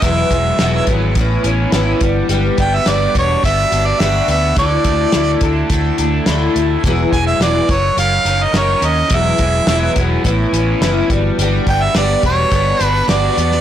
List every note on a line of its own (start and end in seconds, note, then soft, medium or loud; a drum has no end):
0.02 0.23 E1 medium
0.02 0.31 E2 medium
0.02 0.31 B2 medium
0.02 0.31 F#3 medium
0.02 0.32 G#3 medium
0.02 0.31 B3 medium
0.02 0.29 E4 medium
0.02 0.89 E5 medium
0.02 kick medium
0.02 closed hi-hat medium
0.31 0.51 E1 medium
0.31 0.60 F#3 soft
0.31 0.60 G#3 soft
0.31 0.60 B3 soft
0.31 0.60 E4 soft
0.31 kick medium
0.31 closed hi-hat medium
0.59 0.80 E1 medium
0.59 0.88 E2 medium
0.59 0.89 B2 medium
0.59 0.89 F#3 medium
0.59 0.89 G#3 medium
0.59 0.88 B3 medium
0.59 0.87 E4 medium
0.59 snare medium
0.59 closed hi-hat medium
0.87 1.16 G#1 medium
0.87 1.18 G#3 soft
0.87 1.17 B3 soft
0.87 1.17 E4 soft
0.87 kick medium
0.87 closed hi-hat medium
0.91 1.17 F#3 soft
1.15 1.36 A1 medium
1.15 2.01 A2 medium
1.15 1.45 E3 medium
1.15 1.46 B3 medium
1.15 kick medium
1.15 closed hi-hat medium
1.20 1.45 C#4 medium
1.20 1.44 E4 medium
1.44 1.65 A1 medium
1.44 1.73 B3 soft
1.44 1.73 C#4 soft
1.44 1.73 E4 soft
1.44 closed hi-hat medium
1.72 1.93 G#1 medium
1.72 2.01 A2 medium
1.72 2.02 E3 medium
1.72 2.02 B3 medium
1.72 2.02 C#4 medium
1.72 2.01 E4 medium
1.72 snare medium
1.72 closed hi-hat medium
2.00 2.21 G1 medium
2.00 2.28 G3 medium
2.00 2.29 B3 soft
2.00 2.30 D4 soft
2.00 2.30 F#4 medium
2.00 kick medium
2.00 closed hi-hat soft
2.29 2.49 G1 medium
2.29 2.59 G3 medium
2.29 2.59 B3 medium
2.29 2.58 D4 medium
2.29 2.56 F#4 medium
2.29 closed hi-hat medium
2.57 2.78 G1 medium
2.57 2.86 B3 soft
2.57 2.87 D4 soft
2.57 2.86 F#4 soft
2.57 2.77 G5 medium
2.57 kick medium
2.57 closed hi-hat soft
2.75 2.90 E5 medium
2.86 3.06 G1 medium
2.86 3.15 G3 medium
2.86 3.16 B3 medium
2.86 3.15 D4 medium
2.86 3.14 F#4 medium
2.86 3.16 D5 medium
2.86 snare medium
2.86 closed hi-hat medium
3.15 3.35 E1 medium
3.15 3.43 B3 soft
3.15 3.44 D4 soft
3.15 3.44 F#4 soft
3.15 3.43 C#5 medium
3.15 kick medium
3.15 closed hi-hat medium
3.43 3.64 G1 medium
3.43 3.72 G3 soft
3.43 3.72 B3 medium
3.43 3.71 D4 medium
3.43 3.69 F#4 medium
3.43 3.88 E5 medium
3.43 kick medium
3.43 closed hi-hat medium
3.71 3.92 G1 medium
3.71 4.00 B3 soft
3.71 4.01 D4 soft
3.71 4.00 F#4 soft
3.71 closed hi-hat medium
3.87 4.02 D5 medium
4.00 4.20 G1 medium
4.00 4.29 G3 medium
4.00 4.29 B3 medium
4.00 4.30 D4 medium
4.00 4.28 F#4 medium
4.00 4.29 E5 medium
4.00 snare loud
4.00 closed hi-hat medium
4.28 4.56 D2 medium
4.28 4.58 D4 soft
4.28 4.57 F#4 soft
4.28 4.56 E5 medium
4.28 closed hi-hat medium
4.32 4.58 B3 soft
4.56 4.77 D2 medium
4.56 4.86 D3 medium
4.56 4.86 A3 medium
4.56 4.85 E4 medium
4.56 4.83 A4 medium
4.56 5.39 D5 medium
4.56 kick medium
4.56 closed hi-hat medium
4.84 5.05 D2 medium
4.84 5.13 A3 soft
4.84 5.13 E4 soft
4.84 5.14 A4 soft
4.84 kick medium
4.84 closed hi-hat medium
5.12 5.35 D2 medium
5.12 5.42 D3 medium
5.12 5.42 A3 medium
5.12 5.43 E4 medium
5.12 5.41 A4 medium
5.12 snare medium
5.12 closed hi-hat medium
5.41 5.62 D2 medium
5.41 5.97 D4 medium
5.41 5.72 E4 soft
5.41 5.71 A4 medium
5.41 kick medium
5.41 closed hi-hat medium
5.45 5.71 A3 soft
5.70 5.90 D2 medium
5.70 6.00 D3 medium
5.70 6.00 A3 medium
5.70 kick medium
5.70 closed hi-hat medium
5.74 5.99 E4 medium
5.74 5.98 A4 medium
5.98 6.19 D2 medium
5.98 6.84 D4 medium
5.98 6.28 E4 soft
5.98 6.28 A4 medium
5.98 closed hi-hat soft
6.02 6.28 A3 soft
6.26 6.47 D2 medium
6.26 6.57 D3 medium
6.26 6.57 A3 medium
6.26 6.57 E4 medium
6.26 snare medium
6.26 closed hi-hat medium
6.30 6.56 A4 medium
6.54 6.76 D2 medium
6.54 6.83 A3 medium
6.54 6.85 A4 medium
6.54 closed hi-hat medium
6.59 6.86 A3 soft
6.59 6.86 E4 soft
6.84 7.04 E1 medium
6.84 7.13 E2 medium
6.84 7.14 E3 medium
6.84 7.14 F#3 medium
6.84 7.14 B3 medium
6.84 7.13 E4 medium
6.84 7.11 G#4 medium
6.84 kick medium
6.84 closed hi-hat medium
7.10 7.32 E1 medium
7.10 7.68 G#3 medium
7.10 7.41 G#4 soft
7.10 7.26 G#5 medium
7.10 kick medium
7.10 closed hi-hat soft
7.14 7.41 F#3 soft
7.14 7.41 B3 soft
7.14 7.42 E4 soft
7.27 7.40 E5 medium
7.40 7.60 E1 medium
7.40 7.70 E2 medium
7.40 7.70 E3 medium
7.40 7.70 F#3 medium
7.40 7.70 B3 medium
7.40 7.71 E4 medium
7.40 7.70 G#4 medium
7.40 7.73 D5 medium
7.40 snare medium
7.40 closed hi-hat medium
7.67 7.89 F#1 medium
7.67 9.11 F#3 medium
7.67 7.99 A#4 soft
7.67 7.99 C#5 medium
7.67 kick medium
7.67 closed hi-hat medium
7.72 7.98 C#4 soft
7.72 7.98 D#4 soft
7.97 8.17 F#1 medium
7.97 8.26 F#3 soft
7.97 8.27 C#4 medium
7.97 8.27 D#4 medium
7.97 8.25 A#4 medium
7.97 8.45 F5 medium
7.97 closed hi-hat medium
8.25 8.45 F#1 medium
8.25 8.55 D#4 soft
8.25 8.55 A#4 soft
8.25 closed hi-hat medium
8.29 8.54 C#4 soft
8.43 8.59 D#5 medium
8.52 8.74 F#1 medium
8.52 8.83 F#3 medium
8.52 8.83 C#4 medium
8.52 8.83 D#4 medium
8.52 9.10 A#4 medium
8.52 snare loud
8.52 closed hi-hat medium
8.57 8.81 A#4 medium
8.57 8.88 C#5 medium
8.81 9.02 D#2 medium
8.81 9.10 C#4 medium
8.81 9.12 D#4 soft
8.81 9.11 A#4 soft
8.81 closed hi-hat medium
8.86 9.12 C#4 soft
8.86 9.17 D#5 medium
9.10 9.31 E1 medium
9.10 9.40 E2 medium
9.10 9.40 B2 medium
9.10 9.40 F#3 medium
9.10 9.40 G#3 medium
9.10 9.39 B3 medium
9.10 9.38 E4 medium
9.10 kick loud
9.10 closed hi-hat medium
9.15 9.99 E5 medium
9.38 9.59 E1 medium
9.38 9.67 G#3 soft
9.38 9.69 B3 soft
9.38 9.68 E4 soft
9.38 kick medium
9.38 closed hi-hat medium
9.43 9.67 F#3 soft
9.67 9.87 E1 medium
9.67 9.96 E2 medium
9.67 9.97 B2 medium
9.67 9.97 F#3 medium
9.67 9.97 G#3 medium
9.67 9.96 B3 medium
9.67 9.95 E4 medium
9.67 snare loud
9.67 closed hi-hat medium
9.96 10.16 E1 medium
9.96 10.24 F#3 soft
9.96 10.24 G#3 soft
9.96 10.23 B3 soft
9.96 10.25 E4 medium
9.96 kick medium
9.96 closed hi-hat medium
10.24 10.44 A1 medium
10.24 11.10 A2 medium
10.24 10.53 E3 medium
10.24 10.53 B3 medium
10.24 10.54 C#4 medium
10.24 10.52 E4 medium
10.24 kick medium
10.24 closed hi-hat medium
10.53 10.73 A1 medium
10.53 10.82 B3 soft
10.53 10.82 C#4 soft
10.53 10.82 E4 medium
10.53 closed hi-hat medium
10.81 11.01 F#1 medium
10.81 11.10 A2 medium
10.81 11.11 E3 medium
10.81 11.11 B3 medium
10.81 11.11 C#4 medium
10.81 11.09 E4 medium
10.81 snare medium
10.81 closed hi-hat medium
11.10 11.30 G1 medium
11.10 11.38 G3 medium
11.10 11.40 B3 soft
11.10 11.40 D4 soft
11.10 11.39 F#4 medium
11.10 kick medium
11.10 closed hi-hat medium
11.38 11.58 G1 medium
11.38 11.68 G3 medium
11.38 11.68 B3 medium
11.38 11.67 D4 medium
11.38 11.66 F#4 medium
11.38 closed hi-hat medium
11.67 11.87 G1 medium
11.67 11.94 B3 soft
11.67 11.94 D4 soft
11.67 11.95 F#4 medium
11.67 11.85 G5 medium
11.67 kick medium
11.67 closed hi-hat medium
11.83 11.97 E5 medium
11.95 12.15 G1 medium
11.95 12.24 G3 medium
11.95 12.24 B3 medium
11.95 12.24 D4 medium
11.95 12.22 F#4 medium
11.95 12.23 D5 medium
11.95 snare medium
11.95 closed hi-hat medium
12.23 12.44 E1 medium
12.23 12.50 B3 soft
12.23 12.51 D4 soft
12.23 12.52 F#4 soft
12.23 12.84 C#5 medium
12.23 kick medium
12.23 closed hi-hat medium
12.51 12.72 G1 medium
12.51 12.80 G3 medium
12.51 12.80 B3 medium
12.51 12.80 D4 medium
12.51 12.78 F#4 medium
12.51 kick medium
12.51 closed hi-hat medium
12.79 13.01 G1 medium
12.79 13.07 B3 soft
12.79 13.08 D4 soft
12.79 13.08 F#4 soft
12.79 closed hi-hat soft
12.84 13.06 B4 medium
13.07 13.29 G1 medium
13.07 13.37 G3 medium
13.07 13.37 B3 medium
13.07 13.37 D4 medium
13.07 13.35 F#4 medium
13.07 13.61 D5 medium
13.07 snare loud
13.07 closed hi-hat medium
13.37 13.57 E2 medium
13.37 13.61 B3 soft
13.37 13.61 D4 soft
13.37 13.61 F#4 soft
13.37 closed hi-hat medium
13.52 snare soft